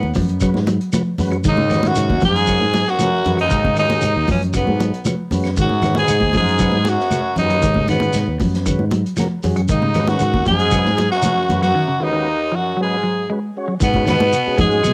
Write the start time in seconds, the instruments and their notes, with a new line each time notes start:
Already playing: trombone section B1, trumpet B3, tenor saxophone B3
0.03 fingered electric bass D#2, high conga
0.14 fingered electric bass F#2, clean electric guitar F3, kick, open hi-hat, high conga, low conga, shekere
0.29 closed hi-hat
0.40 clean electric guitar F#3, tonewheel organ G#3 C#4 F#4 B4, kick, closed hi-hat, claves, shekere
0.54 fingered electric bass G#2, snare, high conga
0.67 clean electric guitar F#3, closed hi-hat, high conga, shekere
0.81 closed hi-hat
0.93 clean electric guitar F3, tonewheel organ G#3 C#4 F#4 B4, closed hi-hat, high conga, claves, shekere
1.18 fingered electric bass F#2, tonewheel organ G#3 C#4 F#4 B4, open hi-hat, high conga, low conga, shekere
1.31 clean electric guitar F#3, closed hi-hat, claves
1.44 trombone section D#2, fingered electric bass G#2, clean electric guitar D#3, trumpet D#4, kick, closed hi-hat, shekere
1.48 tenor saxophone D#4
1.57 clean electric guitar C#3, high conga
1.70 clean electric guitar D#3, tonewheel organ G#3 C#4 F#4 B4, snare, closed hi-hat, low conga, claves, shekere
1.83 trombone section F#2, clean electric guitar D#3, trumpet F#4, snare, closed hi-hat, high conga
1.88 tenor saxophone F#4
1.95 fingered electric bass G#2, closed hi-hat, claves, shekere
2.10 fingered electric bass D#2, kick, high conga
2.21 fingered electric bass F#2, clean electric guitar F3, tenor saxophone G#4, kick, closed hi-hat, high conga, low conga, shekere
2.25 trombone section G#2, trumpet G#4
2.36 closed hi-hat
2.47 clean electric guitar F#3, tonewheel organ G#3 C#4 F#4 A#4, kick, closed hi-hat, claves, shekere
2.61 fingered electric bass G#2, high conga
2.74 clean electric guitar F#3, snare, closed hi-hat, high conga, shekere
2.87 trombone section F#2, trumpet F#4, tenor saxophone F#4, snare
2.99 clean electric guitar F3, tonewheel organ G#3 C#4 F#4 B4, closed hi-hat, high conga, claves, shekere
3.25 fingered electric bass F#2, tonewheel organ G#3 C#4 F#4 B4, closed hi-hat, low conga, shekere
3.37 trombone section D#2, clean electric guitar F#3, trumpet D#4, tenor saxophone D#4, closed hi-hat, claves
3.50 fingered electric bass G#2, muted clean electric guitar stroke, kick, closed hi-hat, shekere
3.64 clean electric guitar C#3, kick, high conga
3.76 trombone section D#2, clean electric guitar D#3, tonewheel organ G#3 C#4 F#4 G#4, trumpet D#4, tenor saxophone D#4, snare, closed hi-hat, claves, shekere
3.89 clean electric guitar D#3, snare, closed hi-hat, high conga
4.01 fingered electric bass G#2, closed hi-hat, claves, shekere
4.16 fingered electric bass D#2
4.28 trombone section C#2, fingered electric bass F#2, clean electric guitar F3, trumpet C#4, tenor saxophone C#4, kick, open hi-hat, high conga, low conga, shekere
4.42 closed hi-hat
4.53 trombone section B1, clean electric guitar F#3, tonewheel organ G#3 C#4 F#4, tenor saxophone B3, trumpet B3, kick, closed hi-hat, claves, shekere
4.58 tonewheel organ B4
4.67 fingered electric bass G#2, high conga
4.80 clean electric guitar F#3, closed hi-hat, high conga, shekere
4.94 closed hi-hat
5.05 clean electric guitar F3, tonewheel organ G#3 C#4 F#4 B4, closed hi-hat, high conga, claves, shekere
5.31 fingered electric bass F#2, tonewheel organ G#3 C#4 F#4 B4, open hi-hat, high conga, low conga, shekere
5.44 snare, closed hi-hat, claves
5.57 trombone section F#2, fingered electric bass G#2, clean electric guitar D#3, trumpet F#4, kick, closed hi-hat, shekere
5.61 tenor saxophone F#4
5.69 high conga
5.82 clean electric guitar D#3, tonewheel organ G#3 C#4 F#4 B4, snare, closed hi-hat, low conga, claves, shekere
5.95 trombone section G#2, clean electric guitar D#3, trumpet G#4, tenor saxophone G#4, closed hi-hat, high conga
6.08 fingered electric bass G#2, closed hi-hat, claves, shekere
6.21 fingered electric bass D#2, kick, high conga
6.33 fingered electric bass F#2, trombone section G#2, clean electric guitar F3, trumpet G#4, tenor saxophone G#4, kick, closed hi-hat, high conga, low conga, shekere
6.49 closed hi-hat
6.59 clean electric guitar F#3, tonewheel organ G#3 C#4 F#4 B4, kick, closed hi-hat, claves, shekere
6.72 fingered electric bass G#2, high conga
6.85 trombone section F#2, trumpet F#4, tenor saxophone F#4, snare, closed hi-hat, high conga, shekere
7.00 snare
7.11 tonewheel organ G#3 C#4 F#4 B4, closed hi-hat, high conga, claves, shekere
7.36 trombone section D#2, fingered electric bass F#2, tonewheel organ G#3, trumpet D#4, tenor saxophone D#4, closed hi-hat, low conga, shekere
7.40 tonewheel organ C#4 F#4 B4
7.50 clean electric guitar F#3, closed hi-hat, claves
7.62 fingered electric bass G#2, clean electric guitar D#3, kick, closed hi-hat, shekere
7.74 clean electric guitar C#3, kick, high conga
7.88 trombone section B1, clean electric guitar D#3, tonewheel organ G#3 C#4 F#4, trumpet B3, tenor saxophone B3, snare, closed hi-hat, low conga, claves, shekere
7.92 tonewheel organ B4
8.00 clean electric guitar D#3, closed hi-hat, high conga
8.13 fingered electric bass G#2, snare, closed hi-hat, claves, shekere
8.28 fingered electric bass D#2
8.40 fingered electric bass F#2, clean electric guitar F3, kick, open hi-hat, high conga, low conga, shekere
8.55 snare, closed hi-hat
8.66 clean electric guitar D#3, tonewheel organ G#3 C#4 F#4 B4, kick, closed hi-hat, claves, shekere
8.79 fingered electric bass G#2, high conga
8.91 clean electric guitar F#3, closed hi-hat, high conga, shekere
9.06 closed hi-hat
9.17 clean electric guitar F3, tonewheel organ G#3 C#4 F#4 A#4, snare, closed hi-hat, high conga, claves, shekere
9.43 fingered electric bass F#2, tonewheel organ G#3 C#4 F#4 G#4, open hi-hat, low conga, shekere
9.56 clean electric guitar F#3, closed hi-hat, claves
9.68 trombone section D#2, fingered electric bass G#2, clean electric guitar D#3, trumpet D#4, tenor saxophone D#4, kick, closed hi-hat, shekere
9.82 clean electric guitar C#3, high conga
9.94 clean electric guitar D#3, tonewheel organ G#3 C#4 F#4, snare, closed hi-hat, low conga, claves, shekere
9.98 tonewheel organ B4
10.07 trombone section F#2, clean electric guitar D#3, trumpet F#4, tenor saxophone F#4, snare, closed hi-hat, high conga
10.19 fingered electric bass G#2, closed hi-hat, claves, shekere
10.34 fingered electric bass D#2, kick, high conga
10.45 fingered electric bass F#2, trombone section G#2, clean electric guitar F3, trumpet G#4, tenor saxophone G#4, kick, closed hi-hat, high conga, low conga, shekere
10.59 closed hi-hat
10.71 clean electric guitar F#3, tonewheel organ G#3 C#4 F#4 B4, kick, closed hi-hat, claves, shekere
10.85 fingered electric bass G#2, snare, high conga
10.97 clean electric guitar F#3, snare, closed hi-hat, high conga, shekere
11.10 trombone section F#2, trumpet F#4, tenor saxophone F#4, snare
11.22 clean electric guitar F3, tonewheel organ G#3 C#4 F#4 B4, closed hi-hat, high conga, claves, shekere
11.49 fingered electric bass F#2, tonewheel organ G#3 C#4 F#4 B4, closed hi-hat, high conga, low conga, shekere
11.62 trombone section F#2, clean electric guitar F#3, trumpet F#4, tenor saxophone F#4, snare, closed hi-hat, claves
11.75 clean electric guitar D#3
11.88 clean electric guitar C#3
12.00 trombone section D#2, clean electric guitar D#3, tonewheel organ G#3 C#4 F#4 B4, trumpet D#4, tenor saxophone D#4
12.13 clean electric guitar D#3
12.52 trombone section F#2, clean electric guitar F3, trumpet F#4, tenor saxophone F#4
12.77 trombone section G#2, clean electric guitar F#3, tonewheel organ G#3 C#4 F#4 B4
12.81 trumpet G#4, tenor saxophone G#4
13.03 clean electric guitar F#3
13.30 clean electric guitar G#3, tonewheel organ G#3 C#4 F#4 B4
13.57 tonewheel organ G#3 C#4 F#4 C#5
13.68 clean electric guitar F#3
13.80 fingered electric bass G#2, trombone section B2, trumpet B3, tenor saxophone B3, muted clean electric guitar stroke, kick, snare, closed hi-hat, shekere
13.94 tonewheel organ G#3 C#4 F#4 B4, kick, closed hi-hat, high conga
14.06 trombone section B2, clean electric guitar D#3, trumpet B3, tenor saxophone B3, snare, closed hi-hat, low conga, claves, shekere
14.20 fingered electric bass G#2, snare, high conga
14.33 closed hi-hat, claves, shekere
14.47 tonewheel organ G#3 C#4 F#4 G#4, muted fingered electric bass stroke
14.56 fingered electric bass G#2, clean electric guitar F3, trombone section G#3, trumpet G#4, kick, closed hi-hat, high conga, low conga, shekere
14.61 tenor saxophone G#4
14.71 closed hi-hat
14.84 fingered electric bass B2, clean electric guitar F#3, closed hi-hat, claves, shekere